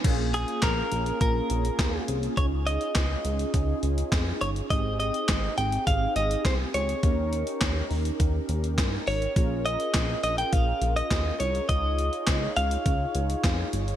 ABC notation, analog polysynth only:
X:1
M:4/4
L:1/8
Q:1/4=103
K:Bbdor
V:1 name="Analog polysynth"
[B,DFA]8 | [DEFA]8 | [CEGA]8 | [DEGB]8 |
[DFAB]8 | [EFAd]8 |]